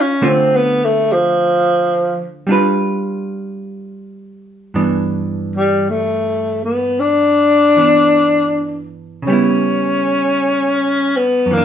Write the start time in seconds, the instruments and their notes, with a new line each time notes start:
Already playing: hollow-body jazz guitar C#3 F3 C4 D#4
0.00 tenor saxophone C#4
0.22 hollow-body jazz guitar D3 A3 C4 F4
0.28 tenor saxophone C4
0.55 tenor saxophone B3
0.84 tenor saxophone A3
1.12 tenor saxophone F3
2.47 hollow-body jazz guitar G3 D4
2.51 hollow-body jazz guitar F4 B4
4.74 hollow-body jazz guitar G2 E3 B3 D4
5.56 tenor saxophone G3
5.89 tenor saxophone A3
6.64 tenor saxophone B3
6.99 tenor saxophone D4
7.76 hollow-body jazz guitar E3 B3 D4
9.22 hollow-body jazz guitar C#3
9.27 hollow-body jazz guitar G3 B3, tenor saxophone C#4
9.33 hollow-body jazz guitar E4
11.16 tenor saxophone B3
11.46 hollow-body jazz guitar F#2
11.51 hollow-body jazz guitar E3, tenor saxophone A#3
11.58 hollow-body jazz guitar D4